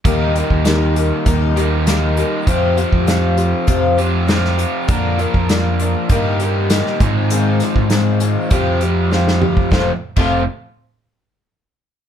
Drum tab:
CC |----------------|----------------|----------------|----------------|
HH |x-x-x-x-x-x-x-x-|x-x-x-x-x-x-x-x-|x-x-x-x-x-x-x-x-|x-x-x-x-x-x-----|
SD |----o-------o---|----o-------oo--|----o-------oo--|--o-o-------oo--|
T2 |----------------|----------------|----------------|--------------o-|
BD |o--o----o-------|o--o----o-------|o--o----o-----o-|---o----o------o|

CC |---x------------|
HH |----------------|
SD |o---------------|
T2 |----------------|
BD |o--o------------|